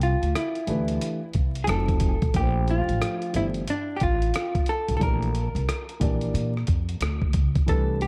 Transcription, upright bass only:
0.00 0.14 C2 loud
0.22 0.33 D2 medium
0.68 0.97 D2 medium
1.35 1.69 C2 medium
1.68 2.14 F1 medium
2.22 2.33 B1 medium
2.35 2.81 A#1 medium
2.88 2.99 A1 medium
3.34 3.63 G1 medium
4.01 4.30 A1 medium
4.89 4.99 B1 medium
5.01 5.47 A#1 loud
5.55 5.66 C2 medium
6.01 6.30 A#1 medium
6.34 6.63 A#2 medium
6.68 6.96 F2 medium
7.01 7.29 D2 medium
7.34 7.63 C#2 medium
7.68 8.07 C2 loud

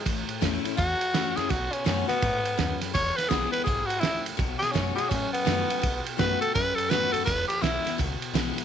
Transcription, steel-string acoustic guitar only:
0.05 0.75 A2 medium
0.41 0.63 E3 medium
0.41 0.63 A3 loud
0.41 0.64 C#4 medium
0.41 0.63 E4 loud
0.64 0.78 C#4 medium
0.64 0.77 E4 medium
0.77 1.47 E2 loud
1.13 1.35 E3 medium
1.13 1.36 A3 loud
1.13 1.36 C#4 loud
1.13 1.35 E4 loud
1.36 1.50 C#4 medium
1.36 1.49 E4 medium
1.49 2.19 B2 medium
1.84 2.07 D#3 medium
1.84 2.08 A3 medium
1.84 2.08 B3 loud
1.84 2.06 F#4 medium
2.07 2.22 B3 medium
2.07 2.21 F#4 medium
2.22 2.57 G#2 loud
2.58 2.93 F#2 medium
2.94 3.63 E2 medium
3.29 3.64 E3 medium
3.29 3.65 G#3 medium
3.29 3.65 B3 medium
3.29 3.66 E4 loud
3.66 4.01 G#2 medium
4.01 4.37 A2 loud
4.37 5.07 B2 loud
4.73 4.96 D#3 medium
4.73 4.96 A3 medium
4.73 4.96 B3 loud
4.73 4.95 F#4 medium
4.96 5.11 B3 medium
4.96 5.09 F#4 medium
5.11 5.80 F#2 loud
5.45 5.68 D#3 loud
5.45 5.68 A3 loud
5.45 5.68 B3 loud
5.45 5.66 F#4 loud
5.68 5.82 B3 medium
5.68 5.81 F#4 medium
5.82 6.51 B2 loud
6.17 6.39 D#3 loud
6.17 6.40 A3 loud
6.17 6.40 B3 loud
6.17 6.39 F#4 loud
6.41 6.55 B3 medium
6.41 6.54 F#4 medium
6.55 7.24 F#2 loud
6.90 7.12 D#3 loud
6.90 7.12 A3 loud
6.90 7.13 B3 loud
6.90 7.11 F#4 loud
7.12 7.27 B3 medium
7.12 7.26 F#4 medium
7.26 7.96 E2 medium
7.62 7.84 E3 medium
7.62 7.84 G#3 loud
7.62 7.84 B3 medium
7.62 7.83 E4 loud
7.85 7.99 B3 medium
7.85 7.98 E4 medium
7.98 8.65 B2 medium
8.34 8.56 E3 loud
8.34 8.56 G#3 loud
8.34 8.57 B3 loud
8.34 8.54 E4 loud
8.56 8.65 B3 soft
8.56 8.65 E4 medium

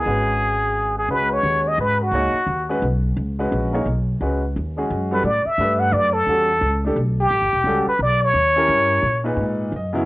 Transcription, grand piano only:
0.06 1.02 G#3 medium
0.06 1.03 C#4 medium
0.06 1.03 F#4 medium
0.06 1.03 B4 medium
1.10 2.06 G#3 medium
1.10 2.06 C#4 medium
1.10 2.07 F#4 medium
1.10 2.07 B4 medium
2.13 2.33 A#3 medium
2.13 2.33 D#4 medium
2.13 2.34 G#4 medium
2.13 2.34 C#5 medium
2.69 2.81 G#3 medium
2.69 2.81 C#4 medium
2.69 2.82 F#4 medium
2.69 2.82 B4 medium
3.39 3.71 G#3 medium
3.39 3.72 C#4 medium
3.39 3.72 F#4 medium
3.39 3.72 B4 medium
3.73 3.85 A#3 medium
3.73 3.85 D#4 medium
3.73 3.85 G#4 medium
3.73 3.86 C#5 medium
4.21 4.41 G#3 medium
4.21 4.41 C#4 medium
4.21 4.41 F#4 medium
4.21 4.41 B4 medium
4.77 5.09 G#3 medium
4.77 5.10 C#4 medium
4.77 5.10 F#4 medium
4.77 5.10 G#4 medium
5.11 5.23 G3 medium
5.11 5.23 C#4 medium
5.11 5.23 F#4 medium
5.11 5.24 A4 medium
5.59 6.11 A3 medium
5.59 6.11 D4 medium
5.59 6.11 G4 medium
5.59 6.12 B4 medium
6.28 6.47 G3 medium
6.28 6.48 C#4 medium
6.28 6.48 F#4 medium
6.28 6.48 A4 medium
6.85 6.96 A3 medium
6.85 6.96 D4 medium
6.85 6.97 G4 medium
6.85 6.97 A4 medium
7.66 7.85 G3 medium
7.66 7.86 C#4 medium
7.66 7.86 F#4 medium
7.66 7.86 A4 medium
8.56 9.01 C#4 medium
8.56 9.01 E4 medium
8.56 9.01 G4 medium
8.56 9.02 A#4 medium
9.24 9.69 A#2 medium
9.24 9.70 D#4 medium
9.24 9.70 G#4 medium
9.24 9.70 B4 medium
9.76 10.05 D#5 medium
9.93 10.05 C#3 medium
9.93 10.05 F#3 medium
9.93 10.05 B3 medium
9.93 10.05 E4 medium

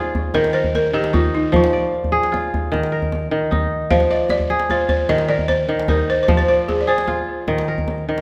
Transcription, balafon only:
0.00 0.36 C5 medium
0.35 0.55 A#4 loud
0.53 0.74 C5 medium
0.75 0.95 A#4 medium
0.94 1.12 G4 medium
1.14 1.34 F4 medium
1.34 1.54 D#4 medium
1.56 2.30 F4 medium
3.91 4.11 F5 medium
4.11 4.31 D#5 medium
4.30 4.67 D5 medium
4.71 4.88 C5 medium
4.89 5.10 C5 medium
5.09 5.28 D#5 loud
5.29 5.50 D5 medium
5.48 5.90 C5 medium
5.89 6.10 A#4 medium
6.10 6.22 C5 medium
6.23 6.36 C5 medium
6.37 6.47 C5 medium
6.48 6.69 C5 medium
6.68 6.82 G#4 medium
6.81 6.88 D5 medium
6.89 8.04 C5 medium

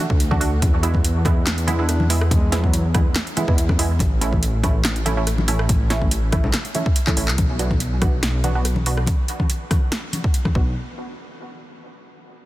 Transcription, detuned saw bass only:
0.10 0.19 D2 loud
0.20 0.61 D2 medium
0.62 1.46 E2 loud
1.47 2.30 E2 medium
2.31 3.14 E2 loud
3.48 3.57 E2 loud
3.58 3.99 E2 medium
4.00 4.84 A1 loud
4.85 5.68 A1 medium
5.69 6.52 A1 loud
7.17 7.30 A1 loud
7.28 7.37 C#2 medium
7.38 8.22 B1 loud
8.23 9.06 B1 medium
10.55 10.75 B1 loud

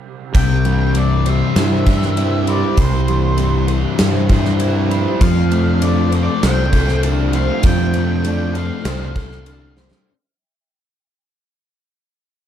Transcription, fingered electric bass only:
0.35 1.41 C2 medium
1.56 2.63 G2 medium
2.77 3.84 C2 loud
4.00 5.06 G2 medium
5.21 6.27 F2 medium
6.43 7.49 C2 medium
7.64 8.70 F2 medium
8.85 9.92 C2 medium

